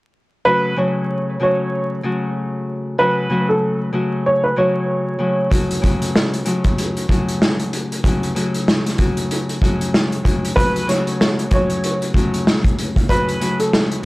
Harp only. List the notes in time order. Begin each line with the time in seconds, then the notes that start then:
0.45 C#3 F#3 A3 C#4 F#4
0.76 C#3 F#3 A3 C#4 F#4
1.40 C#3 F#3 A3 C#4 F#4
2.03 C#3 F#3 A3 C#4 F#4
2.98 C#3 F#3 A3 C#4 F#4
3.29 C#3 F#3 A3 C#4 F#4
3.92 C#3 F#3 A3 C#4 F#4
4.56 C#3 F#3 A3 C#4 F#4
5.19 C#3 F#3 A3 C#4 F#4
5.50 C#3 F#3 A3 C#4 F#4
5.82 C#3 F#3 A3 C#4 F#4
6.45 C#3 F#3 A3 C#4 F#4
7.08 C#3 F#3 A3 C#4 F#4
8.03 C#3 F#3 A3 C#4 F#4
8.35 C#3 F#3 A3 C#4 F#4
8.98 C#3 F#3 A3 C#4 F#4
9.61 C#3 F#3 A3 C#4 F#4
10.24 C#3 F#3 A3 C#4 F#4
10.55 C#3 F#3 A3 C#4 F#4
10.87 C#3 F#3 A3 C#4 F#4
11.50 C#3 F#3 A3 C#4 F#4
12.14 C#3 F#3 A3 C#4 F#4
13.09 C#3 F#3 A3 C#4 F#4
13.40 C#3 F#3 A3 C#4 F#4